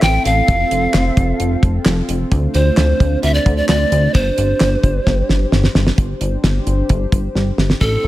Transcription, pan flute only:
0.02 G5
0.25 F5
2.54 C5
3.23 E5
3.34 D5
3.57 D5
3.68 D5
4.14 C5
7.81 A4

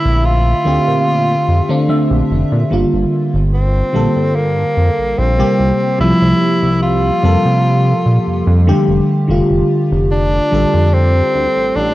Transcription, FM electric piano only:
Already playing: D3 A3 C4 E5
0.64 D3 A3 C4 G4
1.69 D3 A3 C4 D4
1.88 D3 A3 C4 E5
2.70 D3 G3 A#3 F4
3.93 D3 G3 A#3 A4
5.39 C3 G3 A#3 G4
5.99 C3 F3 G3 A#3
7.22 C3 G3 A#3 A4
8.67 D3 G3 A3 G4
9.28 D3 G3 A3 F4
10.51 D3 G3 A3 A4

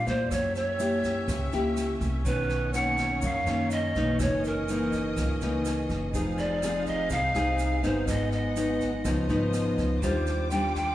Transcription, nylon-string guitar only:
Already playing: A#2
0.07 A#3 E4
0.31 F#3
0.80 A#3 E4 G4
1.28 C#3
1.53 A#3 E4 G4
2.26 B2 D#3 C#4
2.75 D#3 A#3 C#4
3.24 F#2
3.48 D#3 A#3 C#4
3.96 E3 A#3 D#4
4.20 F#2
4.69 E3 A#3 D#4
5.18 C#3
5.43 E3 A#3 D#4
6.14 F3 C4 D#4 G#4
6.63 C4 D#4 G#4
7.11 C3
7.35 C4 D#4 G#4
7.83 F#3 B3 D#4
8.08 G#2
8.56 F#3 B3 D#4
9.05 C#3 F3 B3 D#4
9.29 F3 B3 D#4
10.03 D#3 G3 D4 F4
10.51 G3 D4 F4

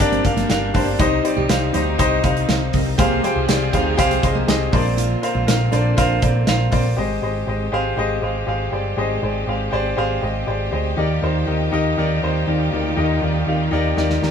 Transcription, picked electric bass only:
0.00 G1
0.25 G1
0.50 G1
0.75 G1
0.99 C2
1.37 C2
1.49 C2
1.74 D2
1.99 C2
2.24 C2
2.49 C2
2.74 C2
2.99 C2
3.36 C2
3.49 C2
3.73 D2
3.99 C2
4.23 C2
4.48 C2
4.73 A#1
5.35 A#1
5.48 A#1
5.72 A#1
5.98 A#1
6.23 A#1
6.48 A#1
6.73 A#1
6.97 G#1
7.22 G#1
7.47 G#1
7.72 G#1
7.97 G#1
8.22 G#1
8.47 G#1
8.72 G1
8.97 G#1
9.23 G#1
9.47 G#1
9.72 G#1
9.98 G#1
10.22 G#1
10.48 G#1
10.73 D2
10.97 D#2
11.22 D#2
11.48 D#2
11.73 D#2
11.98 D#2
12.23 D#2
12.47 D#2
12.73 D2
12.97 D#2
13.22 D#2
13.47 D#2
13.72 D#2
13.97 D#2
14.22 D#2

